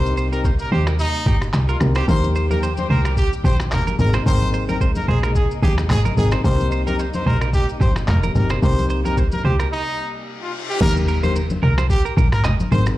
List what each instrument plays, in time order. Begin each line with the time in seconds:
Already playing: log drum bass C2, string section C3 G3 A#3 D#4, tine electric piano C4 D#4 G4 A#4, trumpet C5
0.06 shaker
0.17 clean electric guitar C5, shaker
0.32 tine electric piano C4 D#4 G4 A#4, clean electric guitar A#4, trumpet A#4, shaker
0.44 clean electric guitar C5, kick, shaker
0.59 trumpet A#4, shaker
0.72 log drum bass D#2, trumpet G4, clean electric guitar C5
0.87 clean electric guitar A#4, finger snap, cross-stick, shaker
0.99 trumpet D#4, shaker
1.15 shaker
1.26 log drum bass G1, clean electric guitar G4, kick, shaker
1.42 finger snap, cross-stick, shaker
1.53 log drum bass C2, finger snap, cross-stick, clap, shaker
1.69 trumpet F4, clean electric guitar A#4, shaker
1.80 log drum bass C2, tine electric piano C4 D#4 G4 A#4, finger snap, cross-stick, shaker
1.95 trumpet G4, clean electric guitar C5, finger snap, cross-stick, shaker
2.08 log drum bass D#2, string section D#3 G4, tine electric piano A#3 D#4 G4 A#4, trumpet C5, kick, shaker
2.24 high conga, shaker
2.35 clean electric guitar C5, shaker
2.50 tine electric piano A#3 D#4 G4 A#4, clean electric guitar A#4, trumpet A#4, high conga, shaker
2.63 clean electric guitar C5, shaker
2.77 trumpet C5, high conga, shaker
2.90 log drum bass C2, trumpet A#4, clean electric guitar C5, low conga
3.05 clean electric guitar A#4, finger snap, cross-stick, shaker
3.17 trumpet G4, kick, shaker
3.33 shaker
3.44 log drum bass A#1, clean electric guitar G4, trumpet C5, kick, high conga, shaker
3.60 finger snap, cross-stick, shaker
3.71 log drum bass G1, trumpet A#4, finger snap, cross-stick, clap, low conga, shaker
3.87 clean electric guitar A#4, high conga, shaker
3.99 log drum bass G#1, string section C3 G#3 A#3 D#4, tine electric piano C4 D#4 G#4 A#4, trumpet A#4, high conga, low conga, shaker
4.13 clean electric guitar C5, finger snap, cross-stick, shaker
4.26 log drum bass G#1, tine electric piano C4 D#4 G#4 A#4, trumpet C5, kick, shaker
4.42 high conga, shaker
4.53 clean electric guitar C5, shaker
4.68 tine electric piano C4 D#4 G#4 A#4, clean electric guitar A#4, trumpet A#4, high conga, shaker
4.81 clean electric guitar C5, kick, shaker
4.95 trumpet A#4, high conga, shaker
5.08 log drum bass A#1, trumpet G#4, clean electric guitar C5, low conga
5.23 clean electric guitar A#4, finger snap, cross-stick, shaker
5.35 trumpet G#4, kick, shaker
5.51 shaker
5.63 log drum bass D#2, trumpet G4, clean electric guitar G#4, kick, high conga, shaker
5.78 finger snap, cross-stick, shaker
5.90 log drum bass G#1, trumpet G#4, finger snap, cross-stick, clap, low conga, shaker
6.05 clean electric guitar A#4, high conga, shaker
6.17 log drum bass G#1, tine electric piano C4 D#4 G#4 A#4, trumpet G#4, high conga, low conga, shaker
6.31 clean electric guitar C5, finger snap, cross-stick, shaker
6.44 log drum bass C2, string section G3, tine electric piano C4 D#4 G4 A#4, trumpet C5, kick, shaker
6.60 high conga, shaker
6.71 clean electric guitar C5, shaker
6.86 tine electric piano C4 D#4 G4 A#4, clean electric guitar A#4, trumpet A#4, high conga, shaker
6.99 clean electric guitar C5, shaker
7.13 trumpet C5, high conga, shaker
7.26 log drum bass A#1, trumpet A#4, clean electric guitar C5, low conga
7.41 clean electric guitar A#4, finger snap, cross-stick, shaker
7.53 trumpet G4, kick, shaker
7.69 shaker
7.81 log drum bass G1, clean electric guitar G4, trumpet C5, kick, high conga, shaker
7.96 finger snap, cross-stick, shaker
8.08 log drum bass F1, trumpet A#4, finger snap, cross-stick, clap, low conga, shaker
8.23 clean electric guitar A#4, high conga, shaker
8.35 log drum bass G1, tine electric piano C4 D#4 G4 A#4, trumpet A#4, high conga, low conga, shaker
8.49 clean electric guitar C5, finger snap, cross-stick, shaker
8.62 log drum bass C2, tine electric piano C4 D#4 G4 A#4, trumpet C5, kick, shaker
8.78 high conga, shaker
8.90 clean electric guitar C5, shaker
9.05 tine electric piano C4 D#4 G4 A#4, clean electric guitar A#4, trumpet A#4, high conga, shaker
9.17 clean electric guitar C5, kick, shaker
9.32 trumpet A#4, high conga, shaker
9.44 log drum bass C2, trumpet G4, clean electric guitar C5, low conga
9.60 clean electric guitar A#4, finger snap, cross-stick, shaker
9.72 trumpet D#4, reverse cymbal
10.42 trumpet F4
10.69 trumpet G4
10.81 log drum bass D#2, tine electric piano A#3 D#4 G4 A#4, trumpet A#4, kick, crash, impact, shaker
10.97 high conga, shaker
11.08 clean electric guitar A#4, shaker
11.23 tine electric piano A#3 D#4 G4 A#4, clean electric guitar C5, trumpet C5, high conga, shaker
11.36 clean electric guitar A#4, shaker
11.50 high conga, shaker
11.63 log drum bass C2, clean electric guitar A#4, trumpet A#4, low conga
11.78 clean electric guitar C5, finger snap, cross-stick, high conga, shaker
11.90 trumpet G4, kick, shaker
12.05 clean electric guitar A#4, shaker
12.17 log drum bass A#1, clean electric guitar A#4, kick, high conga, shaker
12.32 trumpet A#4, finger snap, cross-stick, mid tom, shaker
12.44 log drum bass G1, clean electric guitar D#5, finger snap, cross-stick, clap, low conga, shaker
12.60 high conga, shaker
12.71 log drum bass G#1, tine electric piano C4 D#4 G#4 A#4, clean electric guitar C5, trumpet C5, high conga, shaker
12.86 finger snap, cross-stick, shaker